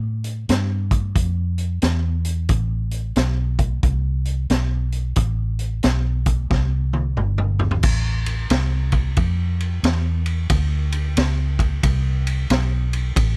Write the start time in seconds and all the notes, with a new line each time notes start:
Already playing: A2
0.24 closed hi-hat
0.49 G2, snare, closed hi-hat
0.91 kick, closed hi-hat
1.15 F2, kick, closed hi-hat
1.58 closed hi-hat
1.82 E2, snare, closed hi-hat
2.25 closed hi-hat
2.49 A1, kick, closed hi-hat
2.91 closed hi-hat
3.16 B1, snare, closed hi-hat
3.59 kick, closed hi-hat
3.83 C2, kick, closed hi-hat
4.25 closed hi-hat
4.50 B1, snare, closed hi-hat
4.92 closed hi-hat
5.16 A1, kick, closed hi-hat
5.59 closed hi-hat
5.83 B1, snare, closed hi-hat
6.26 kick, closed hi-hat
6.50 C2, kick, snare
6.93 high tom
7.17 G1, mid tom
7.38 mid tom
7.59 floor tom
7.71 floor tom
7.83 A1, kick, crash
8.26 ride
8.50 C2, snare, ride
8.92 kick, ride
9.17 F2, kick, ride
9.60 ride
9.83 E2, snare, ride
10.26 ride
10.50 D2, kick, ride
10.92 ride
11.17 C#2, snare, ride
11.59 kick, ride
11.83 C2, kick, ride
12.27 ride
12.50 B1, snare, ride
12.93 ride
13.16 A1, kick, ride